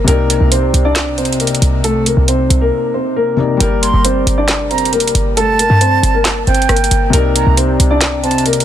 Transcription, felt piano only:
0.04 C3 C4
0.09 D#4 D5
3.37 C3 C4 D#4 D5
3.57 G3 G4
3.62 A#4 D5
7.10 C3 C4
7.15 D#4 D5

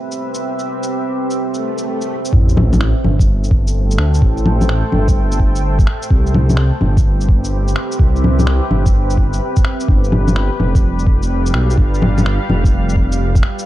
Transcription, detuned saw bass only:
2.33 A1
3.04 G1
3.99 D2
4.22 A1
4.93 G1
6.10 C2
6.82 G1
8.00 C2
8.70 G1
9.17 G1
9.89 G1
10.60 F1
11.55 B1
11.78 G1
12.49 F1

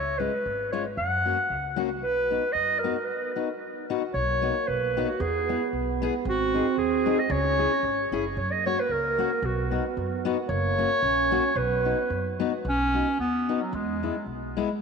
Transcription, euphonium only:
4.15 A#3
5.18 B3
6.26 C4
7.29 C#4
8.36 A#3
9.42 B3
10.48 A#3
11.03 C#4
11.55 B3

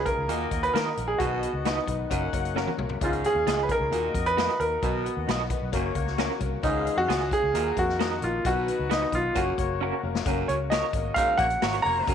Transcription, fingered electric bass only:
0.17 C#2
0.28 D#2
0.52 D#2
0.74 D#3
0.97 A#1
1.20 B1
1.53 C#2
1.87 B1
2.11 F#1
2.33 F#1
2.78 C2
3.01 C#2
3.35 D#2
3.46 C#2
3.80 C#2
3.91 D#2
4.14 F2
4.60 D#2
4.83 B1
5.17 D#2
5.28 B1
5.62 B1
5.73 F#1
5.95 C#2
6.40 C2
6.64 C#2
6.97 F2
7.08 C#2
7.43 C#2
7.54 D#2
7.77 F2
8.22 A#1
8.45 B1
8.79 C#2
9.12 B1
9.35 F#1
9.58 F#1
10.03 F1
10.26 F#1
10.49 C#2
10.94 G#1
11.28 muted fingered electric bass stroke
11.38 A#1
11.63 G#1
11.85 F1
12.07 F#1

